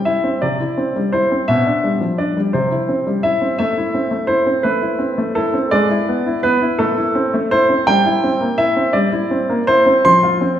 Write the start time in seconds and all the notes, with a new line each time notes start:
0.05 E4 E5
0.24 C4
0.42 C3 D5
0.60 E4
0.78 C4
0.96 G3
1.13 E4 C5
1.32 C4
1.48 B2 E5
1.66 D4
1.84 G3
2.01 F3
2.18 D4 D5
2.37 G3
2.53 C3 C5
2.71 E4
2.89 C4
3.07 G3
3.23 E4 E5
3.42 C4
3.59 A3 E5
3.78 E4
3.94 C4
4.11 A3
4.27 E4 C5
4.47 C4
4.63 A3 B4
4.82 E4
4.99 C4
5.18 A3
5.35 E4 A4
5.54 C4
5.71 G#3 D5
5.90 E4
6.09 B3
6.26 E4
6.43 B3 B4
6.62 E4
6.79 A3 A4
6.97 E4
7.15 C4
7.34 A3
7.51 E4 C5
7.70 C4
7.87 G3 G5
8.06 E4
8.24 C4
8.41 A#3
8.58 E4 E5
8.76 C4
8.93 G3 D5
9.12 E4
9.31 C4
9.50 A#3
9.67 E4 C5
9.86 C4
10.05 F3 C6
10.23 F4
10.41 C4